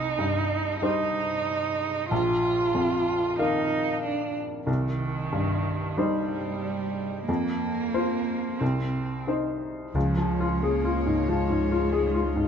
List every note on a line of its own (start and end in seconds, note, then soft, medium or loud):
0.00 2.07 C2 soft
0.00 0.79 D#4 medium
0.18 1.21 G2 soft
0.82 2.07 G3 soft
0.82 2.08 D#4 medium
0.82 2.07 D#4 soft
0.82 2.07 C5 soft
2.11 4.64 A#1 soft
2.11 3.37 F4 medium
2.75 3.77 F2 soft
3.39 4.63 D#3 soft
3.39 4.63 A#3 soft
3.39 4.02 D#4 medium
3.39 4.63 F5 soft
4.03 4.35 D4 medium
4.67 7.24 C2 soft
4.67 5.98 D#3 medium
5.32 6.37 G2 soft
5.97 7.26 G3 medium
5.97 7.24 G3 soft
5.97 7.24 D#4 soft
5.97 7.25 C5 soft
7.27 8.57 F2 soft
7.27 8.61 A#3 medium
7.94 8.57 F4 soft
7.94 8.57 C5 soft
8.59 9.91 C2 soft
8.59 9.27 C4 medium
9.27 9.91 D#4 soft
9.27 9.91 C5 soft
9.93 12.48 C#2 medium
9.93 11.24 C#2 soft
9.93 10.62 F3 medium
9.93 12.48 G#3 soft
9.93 12.48 F4 soft
9.93 12.48 C#5 soft
10.17 10.53 F3 soft
10.40 10.76 F4 soft
10.60 11.29 A#3 medium
10.60 10.98 G#4 soft
10.85 11.19 F4 soft
11.06 11.41 G#2 soft
11.27 11.62 F3 soft
11.27 12.48 G#3 medium
11.50 11.84 G#2 soft
11.72 12.06 F4 soft
11.92 12.27 G#4 soft
12.14 12.48 F4 soft
12.36 12.48 G#2 soft